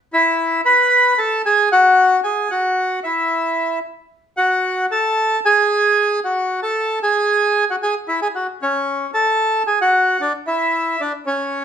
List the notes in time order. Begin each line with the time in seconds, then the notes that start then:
0.13 E4 E5
0.65 B4 B5
1.18 A4 A5
1.46 G#4 G#5
1.72 F#4 F#5
2.24 G#4 G#5
2.51 F#4 F#5
3.04 E4 E5
4.37 F#4 F#5
4.91 A4 A5
5.45 G#4 G#5
6.24 F#4 F#5
6.63 A4 A5
7.03 G#4 G#5
7.71 F#4 F#5
7.83 G#4 G#5
8.08 E4 E5
8.22 G#4 G#5
8.35 F#4 F#5
8.62 C#4 C#5
9.14 A4 A5
9.67 G#4 G#5
9.81 F#4 F#5
10.21 D4 D5
10.47 E4 E5
11.01 D4 D5
11.26 C#4 C#5